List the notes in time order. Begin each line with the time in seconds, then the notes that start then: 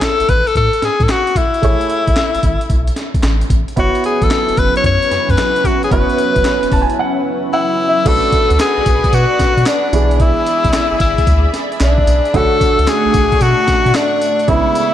Already playing: A3 E4 G#4 C#5
0.02 A4, snare, clap, closed hi-hat
0.20 A1, closed hi-hat
0.29 A1 B4, kick, closed hi-hat
0.47 A4, closed hi-hat
0.55 A2 A4, kick, closed hi-hat
0.73 closed hi-hat
0.82 A2 G#4, snare, closed hi-hat
1.00 A2 A4, kick, closed hi-hat
1.09 F#4, snare, clap, closed hi-hat
1.27 closed hi-hat
1.36 E4, kick, closed hi-hat
1.54 closed hi-hat
1.62 A1 A3 E4 G#4 C#5, kick, closed hi-hat
1.81 closed hi-hat
1.90 closed hi-hat
2.07 A1, kick, closed hi-hat
2.16 snare, clap, closed hi-hat
2.35 G#1, closed hi-hat
2.43 G#1, kick, closed hi-hat
2.61 closed hi-hat
2.70 B1, kick, closed hi-hat
2.87 closed hi-hat
2.96 snare, closed hi-hat
3.14 kick, closed hi-hat
3.23 A1, snare, clap, closed hi-hat
3.41 closed hi-hat
3.50 A1, kick, closed hi-hat
3.68 closed hi-hat
3.76 F#1 F#3 B3 C#4 E4 F#4 B4 C#5, kick, closed hi-hat
3.95 closed hi-hat
4.04 G#4, closed hi-hat
4.22 A1 A4, kick, closed hi-hat
4.31 snare, clap, closed hi-hat
4.49 F#1, closed hi-hat
4.57 F#1 B4, kick, closed hi-hat
4.76 C#5, closed hi-hat
4.84 F#2 C#5, kick, closed hi-hat
5.02 closed hi-hat
5.11 F#2, snare, closed hi-hat
5.29 F#2 B4, kick, closed hi-hat
5.38 snare, clap, closed hi-hat
5.56 closed hi-hat
5.64 F#4, kick, closed hi-hat
5.83 G#4, closed hi-hat
5.91 F#1 B3 E4 F#4 B4 C#5, kick, closed hi-hat
6.10 closed hi-hat
6.18 closed hi-hat
6.36 F#1, kick, closed hi-hat
6.45 snare, clap, closed hi-hat
6.63 E1, closed hi-hat
6.72 E1 A5, kick, open hi-hat
6.82 G#5
6.90 closed hi-hat
6.99 F#5
7.53 E4 F#5
7.89 E5
8.05 B1 A3 D4 F#4 A4 B4 D5 F#5, kick, closed hi-hat, crash
8.32 kick, closed hi-hat, tambourine
8.50 D2, closed hi-hat
8.59 G#4, snare, clap, closed hi-hat, tambourine
8.78 B1
8.86 B1, kick, closed hi-hat, tambourine
9.04 kick, closed hi-hat
9.13 B2 F#4, closed hi-hat, tambourine
9.39 B2, kick, snare, closed hi-hat, tambourine
9.57 B2, closed hi-hat
9.66 D4, snare, clap, closed hi-hat, tambourine
9.92 B1 E3 B3 D4 G#4 E5 B5, closed hi-hat, tambourine
10.11 closed hi-hat
10.20 E4, kick, closed hi-hat
10.46 closed hi-hat, tambourine
10.64 B1, kick, closed hi-hat
10.73 snare, clap, closed hi-hat, tambourine
10.92 G#1
11.00 G#1 E4, kick, closed hi-hat, tambourine
11.18 kick, closed hi-hat
11.27 D2, kick, closed hi-hat, tambourine
11.54 snare, closed hi-hat, tambourine
11.72 closed hi-hat
11.80 B1 D4, snare, clap, closed hi-hat, tambourine
11.98 kick
12.07 B1, closed hi-hat, tambourine
12.25 closed hi-hat
12.34 B1 D3 A3 D4 F#4 A4 C#5 F#5 C#6, kick, closed hi-hat
12.61 kick, closed hi-hat, tambourine
12.79 C#2, closed hi-hat
12.87 G#4, snare, clap, closed hi-hat, tambourine
13.06 B1
13.14 B1, kick, closed hi-hat, tambourine
13.32 kick, closed hi-hat
13.41 B2 F#4, closed hi-hat, tambourine
13.68 B2, kick, snare, closed hi-hat, tambourine
13.86 B2, closed hi-hat
13.95 D4, snare, clap, closed hi-hat, tambourine
14.22 closed hi-hat, tambourine
14.39 closed hi-hat
14.47 B1 C#3 G#3 B3 E4 G#4 E5 B5, kick, closed hi-hat
14.75 closed hi-hat, tambourine